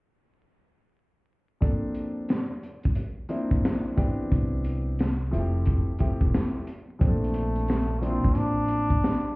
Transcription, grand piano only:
1.60 2.50 F3 medium
1.60 2.50 A#3 medium
1.60 2.51 C4 medium
1.60 2.51 D4 medium
1.60 2.51 A4 medium
3.29 3.94 F3 medium
3.29 3.94 A#3 medium
3.29 3.94 C4 medium
3.29 3.94 D4 medium
3.29 3.95 E4 medium
3.97 5.07 E3 medium
3.97 5.07 B3 medium
3.97 5.07 C4 medium
3.97 5.07 D4 medium
3.97 5.08 G4 medium
5.31 5.90 F3 medium
5.31 5.90 A3 medium
5.31 5.90 C4 medium
5.31 5.90 E4 medium
5.31 5.41 F4 medium
5.39 5.94 G4 medium
5.99 6.64 F3 medium
5.99 6.64 A3 medium
5.99 6.64 C4 medium
5.99 6.64 E4 medium
5.99 6.65 G4 medium
6.99 7.65 A#2 soft
6.99 7.64 F3 medium
6.99 7.65 C4 medium
6.99 7.65 D4 soft
6.99 7.09 G4 soft
7.07 7.69 A4 medium
8.01 8.91 F3 medium
8.01 8.91 A#3 medium
8.01 8.91 C4 medium
8.01 8.91 D4 medium
8.01 8.11 E4 medium
8.09 8.95 F4 medium

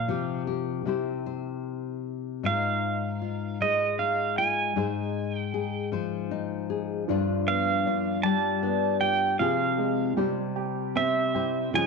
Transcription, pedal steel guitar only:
0.00 0.42 F5 medium
2.46 3.65 F5 medium
3.62 4.00 D#5 medium
3.99 4.38 F5 medium
4.38 5.35 G#5 medium
5.35 5.89 G5 medium
7.48 8.20 F5 medium
8.23 8.96 A5 medium
9.01 9.36 G5 medium
9.39 10.13 F5 medium
10.97 11.77 E5 medium
11.75 11.87 G#5 medium

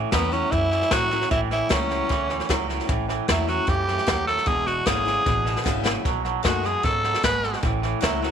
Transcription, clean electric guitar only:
0.00 0.11 A2 medium
0.00 0.11 E3 medium
0.12 0.30 A2 medium
0.12 0.31 F#3 loud
0.32 0.50 A2 medium
0.32 0.50 F#3 medium
0.52 0.70 A2 medium
0.52 0.70 E3 medium
0.72 0.90 A2 medium
0.72 0.90 E3 medium
0.92 1.10 A2 medium
0.92 1.10 F#3 medium
1.11 1.29 A2 medium
1.11 1.29 F#3 medium
1.30 1.49 A2 medium
1.30 1.49 E3 medium
1.51 1.69 A2 medium
1.51 1.69 E3 medium
1.70 1.88 A2 loud
1.70 1.89 F#3 loud
1.90 2.08 A2 medium
1.90 2.09 F#3 medium
2.10 2.28 A2 medium
2.10 2.28 E3 loud
2.30 2.48 A2 medium
2.30 2.48 E3 medium
2.50 2.68 A2 medium
2.50 2.68 F#3 medium
2.69 2.87 A2 medium
2.69 2.88 F#3 medium
2.89 3.07 A2 medium
2.89 3.07 E3 medium
3.08 3.27 A2 medium
3.08 3.27 E3 medium
3.28 3.46 A2 medium
3.28 3.47 F#3 loud
3.48 3.66 A2 medium
3.48 3.66 F#3 medium
3.68 3.86 A2 medium
3.68 3.86 E3 medium
3.88 4.06 A2 medium
3.88 4.06 E3 medium
4.07 4.25 A2 medium
4.07 4.25 F#3 medium
4.27 4.45 A2 medium
4.27 4.45 F#3 medium
4.47 4.65 E2 medium
4.47 4.65 B2 medium
4.66 4.85 E2 medium
4.66 4.85 B2 medium
4.86 5.04 E2 medium
4.86 5.05 C#3 loud
5.06 5.24 E2 medium
5.06 5.24 C#3 medium
5.26 5.44 E2 medium
5.26 5.44 B2 medium
5.45 5.63 E2 medium
5.45 5.64 B2 medium
5.65 5.83 E2 medium
5.65 5.83 C#3 medium
5.85 6.03 E2 medium
5.85 6.03 C#3 medium
6.05 6.23 B2 medium
6.05 6.23 F#3 medium
6.24 6.42 B2 medium
6.24 6.43 F#3 medium
6.44 6.62 B2 medium
6.44 6.62 G#3 medium
6.64 6.82 B2 medium
6.64 6.82 G#3 medium
6.84 7.02 B2 medium
6.84 7.02 F#3 medium
7.04 7.22 B2 medium
7.04 7.22 F#3 medium
7.24 7.42 B2 medium
7.24 7.42 G#3 medium
7.44 7.61 B2 medium
7.44 7.61 G#3 medium
7.63 7.81 A2 medium
7.63 7.81 E3 medium
7.82 8.00 A2 medium
7.82 8.01 E3 medium
8.02 8.20 A2 medium
8.02 8.20 F#3 loud
8.23 8.31 A2 medium
8.23 8.31 F#3 medium

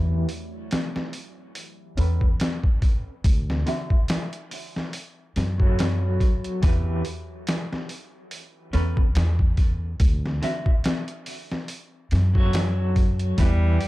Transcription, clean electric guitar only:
0.00 0.25 E3 medium
0.00 0.25 E4 medium
0.00 0.26 G4 medium
0.00 0.26 B4 medium
1.97 2.24 C#4 medium
1.97 2.24 A4 medium
1.97 2.25 B4 medium
3.66 3.93 D3 medium
3.66 3.93 D4 medium
3.66 3.93 F#4 medium
3.66 3.94 E5 medium
5.58 6.60 F#3 medium
5.58 6.60 F#4 medium
5.58 6.61 A4 medium
5.62 6.62 C#5 loud
6.62 7.01 E3 medium
6.62 7.02 E4 medium
6.62 7.02 G4 medium
6.62 7.02 B4 loud
8.73 9.00 C#4 medium
8.73 9.00 A4 medium
8.73 9.01 B4 medium
10.42 10.69 D3 medium
10.42 10.69 D4 medium
10.42 10.69 F#4 medium
10.42 10.70 E5 medium
12.33 13.35 F#3 medium
12.33 13.36 F#4 medium
12.33 13.37 A4 medium
12.38 13.38 C#5 medium
13.38 13.77 E3 medium
13.38 13.78 E4 medium
13.38 13.78 G4 medium
13.38 13.79 B4 medium

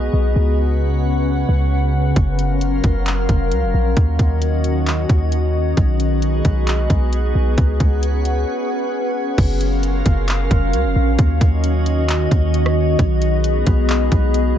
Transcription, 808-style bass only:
0.13 0.35 B1 loud
0.36 1.45 C#2 loud
1.49 2.14 C#2 loud
2.16 2.81 F#1 loud
2.84 3.27 F#1 loud
3.29 3.53 F1 loud
3.52 3.64 C#2 loud
3.63 3.74 F1 loud
3.74 3.96 A#1 loud
3.97 4.18 D#2 loud
4.19 5.06 D#2 loud
5.09 5.74 D#2 loud
5.77 6.42 B1 loud
6.45 6.88 B1 loud
6.90 7.33 B1 loud
7.35 7.57 B1 loud
7.58 7.79 C#2 loud
7.80 8.45 C#2 loud
9.38 10.03 F#1 loud
10.06 10.49 F#1 loud
10.51 10.75 F1 loud
10.73 10.86 C#2 loud
10.85 10.95 F1 loud
10.96 11.18 A#1 loud
11.19 11.40 D#2 loud
11.41 12.28 D#2 loud
12.31 12.96 D#2 loud
12.99 13.64 B1 loud
13.67 14.10 B1 loud
14.12 14.55 B1 loud

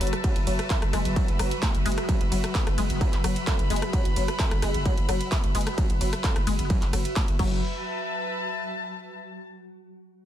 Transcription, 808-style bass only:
0.01 0.13 F#1 loud
0.36 0.46 F#1 medium
0.47 0.59 F#1 loud
0.82 0.93 F#1 medium
0.93 1.05 F#1 loud
1.05 1.16 F#1 medium
1.29 1.39 F#1 medium
1.40 1.51 F#1 loud
1.75 1.85 F#1 medium
1.86 1.97 F#1 loud
2.21 2.31 F#1 medium
2.32 2.43 F#1 loud
2.67 2.77 F#1 medium
2.78 2.89 F#1 loud
2.90 3.01 F#1 medium
3.13 3.24 F#1 medium
3.24 3.36 F#1 loud
3.59 3.70 F#1 medium
3.70 3.82 F#1 loud
4.05 4.16 F#1 medium
4.16 4.28 F#1 loud
4.51 4.62 F#1 medium
4.63 4.74 F#1 loud
4.75 4.85 F#1 medium
4.98 5.08 F#1 medium
5.09 5.20 F#1 loud
5.44 5.54 F#1 medium
5.55 5.66 F#1 loud
5.90 6.00 F#1 medium
6.01 6.13 F#1 loud
6.36 6.46 F#1 medium
6.47 6.58 F#1 loud
6.59 6.70 F#1 medium
6.82 6.92 F#1 medium
6.93 7.05 F#1 loud
7.28 7.39 F#1 medium
7.39 7.61 F#1 loud

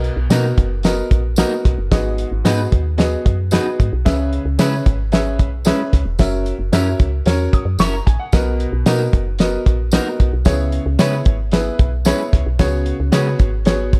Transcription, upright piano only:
0.00 0.54 B2 medium
0.00 0.13 B3 medium
0.00 0.13 F#4 medium
0.00 0.13 A#4 medium
0.00 0.13 D#5 medium
0.31 0.66 B3 medium
0.31 0.66 F#4 medium
0.31 0.66 A#4 medium
0.31 0.66 D#5 medium
0.84 1.19 B3 medium
0.84 1.20 F#4 medium
0.84 1.20 A#4 medium
0.84 1.20 D#5 medium
1.38 1.73 B3 medium
1.38 1.73 F#4 medium
1.38 1.73 A#4 medium
1.38 1.73 D#5 medium
1.91 2.68 G#2 medium
1.91 2.27 B3 medium
1.91 2.27 F#4 medium
1.91 2.27 G#4 medium
1.91 2.27 D#5 medium
2.44 2.80 B3 medium
2.44 2.80 F#4 medium
2.44 2.80 G#4 medium
2.44 2.80 D#5 medium
2.98 3.33 B3 medium
2.98 3.33 F#4 medium
2.98 3.33 G#4 medium
2.98 3.34 D#5 medium
3.51 3.87 B3 medium
3.51 3.87 F#4 medium
3.51 3.87 G#4 medium
3.51 3.87 D#5 medium
4.05 4.81 C#3 medium
4.05 4.40 C#4 medium
4.05 4.40 G#4 medium
4.05 4.41 B4 medium
4.05 4.41 E5 medium
4.59 4.94 C#4 medium
4.59 4.94 G#4 medium
4.59 4.94 B4 medium
4.59 4.94 E5 medium
5.12 5.47 C#4 medium
5.12 5.48 G#4 medium
5.12 5.48 B4 medium
5.12 5.48 E5 medium
5.65 6.01 C#4 medium
5.65 6.01 G#4 medium
5.65 6.01 B4 medium
5.65 6.01 E5 medium
6.19 6.54 C#4 medium
6.19 6.54 F#4 medium
6.19 6.55 A#4 medium
6.19 6.55 E5 medium
6.73 7.08 C#4 medium
6.73 7.08 F#4 medium
6.73 7.08 A#4 medium
6.73 7.08 E5 medium
7.26 7.61 C#4 medium
7.26 7.61 F#4 medium
7.26 7.61 A#4 medium
7.26 7.61 C#5 medium
7.54 7.78 D#6 medium
7.80 7.92 C#6 medium
7.93 8.06 A#5 medium
8.06 8.19 G#5 medium
8.19 8.45 F#5 medium
8.33 9.09 B2 medium
8.33 8.68 B3 medium
8.33 8.68 F#4 medium
8.33 8.68 A#4 medium
8.33 8.68 D#5 medium
8.86 9.22 B3 medium
8.86 9.22 F#4 medium
8.86 9.21 A#4 medium
8.86 9.22 D#5 medium
9.40 9.75 B3 medium
9.40 9.75 F#4 medium
9.40 9.75 A#4 medium
9.40 9.75 D#5 medium
9.92 10.28 B3 medium
9.92 10.28 F#4 medium
9.92 10.28 A#4 medium
9.92 10.28 D#5 medium
10.45 11.22 C#3 medium
10.45 10.81 B3 medium
10.45 10.81 E4 medium
10.45 10.81 G#4 medium
10.45 10.81 C#5 medium
10.99 11.34 B3 medium
10.99 11.34 E4 medium
10.99 11.34 G#4 medium
10.99 11.34 C#5 medium
11.52 11.88 B3 medium
11.52 11.88 E4 medium
11.52 11.88 G#4 medium
11.52 11.88 B4 medium
12.06 12.41 B3 medium
12.06 12.41 E4 medium
12.06 12.41 G#4 medium
12.06 12.41 C#5 medium
12.59 13.36 C#3 medium
12.59 12.95 B3 medium
12.59 12.95 F#4 medium
12.59 12.95 G#4 medium
12.59 12.95 C#5 medium
13.12 13.48 B3 medium
13.12 13.48 F#4 medium
13.12 13.48 G#4 medium
13.12 13.48 C#5 medium
13.66 14.00 B3 medium
13.66 14.00 F#4 medium
13.66 14.00 G#4 medium
13.66 14.00 C#5 medium

